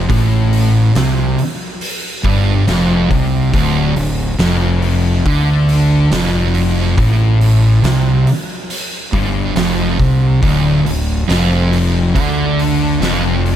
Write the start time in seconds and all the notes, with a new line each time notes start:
0.09 A1 A2, kick, open hi-hat
0.53 open hi-hat
0.95 C2 C3, snare, open hi-hat
1.39 open hi-hat
1.81 open hi-hat
2.24 G1 G2, kick, open hi-hat
2.67 F1 F2, snare, open hi-hat
3.10 C2 C3, kick, open hi-hat
3.53 D1 D2, kick, open hi-hat
3.96 D1 D2, open hi-hat
4.39 F1 F2, snare, open hi-hat
4.82 open hi-hat
5.25 D2 D3, kick, open hi-hat
5.69 open hi-hat
6.11 F1 F2, snare, open hi-hat
6.55 open hi-hat
6.97 A1 A2, kick, open hi-hat
7.41 open hi-hat
7.83 C2 C3, snare, open hi-hat
8.27 open hi-hat
8.70 open hi-hat
9.13 G1 G2, kick, open hi-hat
9.55 F1 F2, snare, open hi-hat
9.99 C2 C3, kick, open hi-hat
10.42 D1 D2, kick, open hi-hat
10.85 D1 D2, open hi-hat
11.28 F1 F2, snare, open hi-hat
11.73 open hi-hat
12.15 D2 D3, kick, open hi-hat
12.59 open hi-hat
13.00 F1 F2, snare, open hi-hat
13.46 open hi-hat